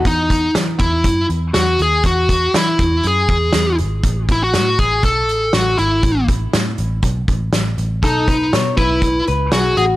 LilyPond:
<<
  \new Staff \with { instrumentName = "Clean electric guitar" } { \time 4/4 \key e \major \tempo 4 = 120 r1 | r1 | r1 | r1 |
a'8 b'8 cis''8 b'4 b'8 gis'8 fis'8 | }
  \new Staff \with { instrumentName = "Lead electric guitar" } { \time 4/4 \key e \major dis'4 r8 e'4 r8 fis'8 gis'8 | fis'4 e'4 gis'4. r8 | r8 e'16 fis'8. gis'8 a'4 fis'8 e'8~ | e'8 r2. r8 |
dis'4 r8 e'4 r8 fis'8 gis'8 | }
  \new Staff \with { instrumentName = "Picked electric bass" } { \clef bass \time 4/4 \key e \major e,4 e8 e,8 fis,8 e,8 e,8 dis,8 | e,4 e8 e,8 fis,8 e,8 e,8 gis,,8 | a,,4 a,8 a,,8 b,,8 a,,8 a,,8 gis,,8 | a,,4 a,8 a,,8 b,,8 a,,8 a,,8 a,,8 |
b,,4 b,8 b,,4 cis,8 b,,8 a,,8 | }
  \new DrumStaff \with { instrumentName = "Drums" } \drummode { \time 4/4 <hh bd>8 <hh bd>8 <hh sn>8 <hh bd>8 <hh bd>8 hh8 <hh sn>8 hh8 | <hh bd>8 <hh bd>8 <hh sn>8 <hh bd>8 hh8 <hh bd>8 <hh sn>8 hh8 | <hh bd>8 <hh bd>8 <hh sn>8 <hh bd>8 <hh bd>8 hh8 <hh sn>8 hh8 | <hh bd>8 <hh bd>8 <hh sn>8 hh8 <hh bd>8 <hh bd>8 <hh sn>8 hh8 |
<hh bd>8 <hh bd>8 <hh sn>8 <hh bd>8 <hh bd>8 hh8 <hh sn>8 hh8 | }
>>